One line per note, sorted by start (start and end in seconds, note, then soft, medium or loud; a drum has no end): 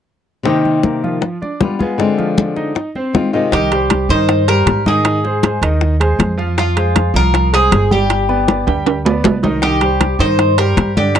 0.43 1.21 C3 medium
0.43 1.21 D#3 medium
0.43 0.77 D#3 medium
0.43 1.21 A#3 medium
0.43 1.21 C4 medium
0.43 0.78 D#4 medium
0.43 1.22 G4 medium
0.43 high bongo medium
0.43 high conga soft
0.65 high conga soft
0.83 1.00 A#3 medium
0.83 1.00 A#4 medium
0.83 high bongo medium
0.83 high conga medium
1.04 1.35 F3 medium
1.04 1.35 F4 medium
1.04 high conga soft
1.21 muted nylon-string guitar stroke medium
1.21 high bongo medium
1.21 high conga soft
1.42 1.73 D4 medium
1.42 1.73 D5 medium
1.42 high conga soft
1.60 1.79 G3 soft
1.60 1.80 B3 soft
1.60 1.78 F4 medium
1.60 high bongo medium
1.60 low bongo medium
1.60 high conga medium
1.79 2.11 G#3 medium
1.79 1.99 B3 medium
1.79 1.98 F4 medium
1.79 2.11 G#4 medium
1.79 high conga medium
1.98 2.75 D3 medium
1.98 2.74 G#3 medium
1.98 2.75 C4 medium
1.98 2.75 F4 medium
1.98 high bongo medium
1.98 high conga soft
2.18 2.50 F3 medium
2.18 2.50 F4 medium
2.18 high bongo soft
2.18 high conga soft
2.38 high bongo medium
2.38 high conga medium
2.56 2.88 D#4 medium
2.56 2.88 D#5 medium
2.56 high bongo soft
2.56 high conga soft
2.75 muted nylon-string guitar stroke medium
2.75 high bongo medium
2.75 high conga soft
2.95 3.27 C4 medium
2.95 3.27 C5 medium
2.95 high conga soft
3.13 3.32 D#3 soft
3.13 3.33 G#3 soft
3.13 3.32 C4 soft
3.13 3.32 F4 medium
3.13 high bongo medium
3.13 low bongo medium
3.13 high conga medium
3.33 3.52 C3 soft
3.33 3.52 D#3 medium
3.33 3.52 G#3 medium
3.33 3.52 C4 medium
3.33 3.49 D#4 medium
3.33 3.52 F4 medium
3.33 3.49 D#5 medium
3.33 high bongo soft
3.52 4.06 C2 medium
3.52 3.69 D#3 medium
3.52 3.69 D#4 medium
3.52 4.10 G4 medium
3.52 3.69 D#5 medium
3.52 high bongo medium
3.52 high conga soft
3.52 high timbale medium
3.72 4.03 G3 medium
3.72 4.03 G4 medium
3.72 4.04 C5 medium
3.72 high conga soft
3.72 high timbale medium
3.90 high bongo medium
3.90 high conga medium
3.90 high timbale medium
4.09 4.63 G2 medium
4.09 4.42 D#3 medium
4.09 4.42 D#4 medium
4.09 4.48 C5 loud
4.09 4.42 D#5 medium
4.09 high conga soft
4.29 high bongo medium
4.29 high conga soft
4.29 high timbale medium
4.48 4.79 G3 medium
4.48 4.80 G4 medium
4.48 4.87 A#4 medium
4.48 4.80 C5 medium
4.48 high conga soft
4.48 high timbale medium
4.66 5.56 G#2 medium
4.66 high bongo medium
4.66 low bongo medium
4.66 high conga medium
4.66 high timbale medium
4.86 5.17 D#3 medium
4.86 5.17 D#4 medium
4.86 5.59 G#4 medium
4.86 5.18 D#5 medium
4.86 high conga medium
5.05 high bongo medium
5.05 high conga soft
5.05 high timbale medium
5.24 5.40 G#3 medium
5.24 5.40 G#4 medium
5.24 5.40 C5 medium
5.24 high bongo soft
5.24 high conga soft
5.43 5.59 G#3 medium
5.43 5.59 G#4 medium
5.43 5.59 C5 medium
5.43 high bongo medium
5.43 high conga medium
5.43 high timbale medium
5.62 6.15 D#2 medium
5.62 5.94 D#3 medium
5.62 5.94 D#4 medium
5.62 5.94 D#5 medium
5.62 high bongo soft
5.62 high conga soft
5.62 high timbale medium
5.81 high bongo medium
5.81 high conga soft
6.00 6.31 G#3 medium
6.00 6.32 G#4 medium
6.00 6.32 C5 medium
6.00 high conga soft
6.00 high timbale medium
6.19 7.08 F2 medium
6.19 high bongo medium
6.19 low bongo medium
6.19 high conga medium
6.19 high timbale medium
6.37 6.54 F3 medium
6.37 6.54 F4 medium
6.37 6.54 F5 medium
6.37 high bongo soft
6.57 6.73 F3 medium
6.57 6.73 F4 medium
6.57 7.17 F4 medium
6.57 6.73 F5 medium
6.57 high bongo medium
6.57 high conga soft
6.57 high timbale medium
6.76 7.08 G#3 medium
6.76 7.08 G#4 medium
6.76 7.08 C5 medium
6.76 high conga soft
6.76 high timbale medium
6.96 high bongo medium
6.96 high conga medium
6.96 high timbale medium
7.14 7.67 C2 medium
7.14 7.46 F3 medium
7.14 7.46 F4 medium
7.14 7.51 A#4 loud
7.14 7.46 F5 medium
7.14 high conga soft
7.34 high bongo medium
7.34 high conga soft
7.34 high timbale medium
7.53 7.84 G#3 medium
7.53 7.84 G#4 medium
7.53 7.92 G#4 loud
7.53 7.84 C5 medium
7.53 high conga soft
7.53 high timbale medium
7.72 8.61 G1 medium
7.72 high bongo medium
7.72 low bongo medium
7.72 high conga medium
7.72 high timbale medium
7.91 8.22 G3 medium
7.91 8.22 G4 medium
7.91 8.64 G4 medium
7.91 8.22 G5 medium
7.91 high conga medium
8.10 high bongo medium
8.10 high conga soft
8.10 high timbale medium
8.29 8.45 B3 medium
8.29 8.45 B4 medium
8.29 8.45 D5 medium
8.29 high bongo soft
8.29 high conga soft
8.47 8.63 B3 medium
8.47 8.64 B4 medium
8.47 8.64 D5 medium
8.47 high bongo medium
8.47 high conga medium
8.47 high timbale medium
8.67 9.20 D2 medium
8.67 8.98 G3 medium
8.67 8.98 G4 medium
8.67 8.98 G5 medium
8.67 high bongo soft
8.67 high conga soft
8.67 high timbale medium
8.86 high bongo medium
8.86 high conga soft
8.86 high timbale medium
9.05 9.36 B3 medium
9.05 9.37 B4 medium
9.05 9.37 D5 medium
9.05 high conga soft
9.05 low timbale medium
9.24 10.14 C2 medium
9.24 high bongo medium
9.24 low bongo medium
9.24 high conga medium
9.24 low timbale medium
9.43 9.59 D#3 medium
9.43 9.59 D#4 medium
9.43 9.59 D#5 medium
9.43 high bongo soft
9.43 high conga medium
9.43 low timbale medium
9.62 9.78 D#3 medium
9.62 9.78 D#4 medium
9.62 10.16 G4 medium
9.62 9.79 D#5 medium
9.62 high bongo medium
9.62 high conga soft
9.62 high timbale medium
9.81 10.13 G3 medium
9.81 10.13 G4 medium
9.81 10.13 C5 medium
9.81 high conga soft
9.81 high timbale medium
10.01 high bongo medium
10.01 high conga medium
10.01 high timbale medium
10.19 10.73 G2 medium
10.19 10.51 D#3 medium
10.19 10.51 D#4 medium
10.19 10.58 C5 medium
10.19 10.52 D#5 medium
10.19 high conga soft
10.39 high bongo medium
10.39 high conga soft
10.39 high timbale medium
10.58 10.90 G3 medium
10.58 10.90 G4 medium
10.58 10.97 A#4 medium
10.58 10.90 C5 medium
10.58 high conga soft
10.58 high timbale medium
10.77 11.20 G2 medium
10.77 high bongo medium
10.77 low bongo medium
10.77 high conga medium
10.77 high timbale medium
10.97 11.20 D3 medium
10.97 11.20 D4 medium
10.97 11.20 G4 medium
10.97 11.20 D5 medium
10.97 high conga medium
11.15 high bongo medium
11.15 high conga soft
11.15 high timbale medium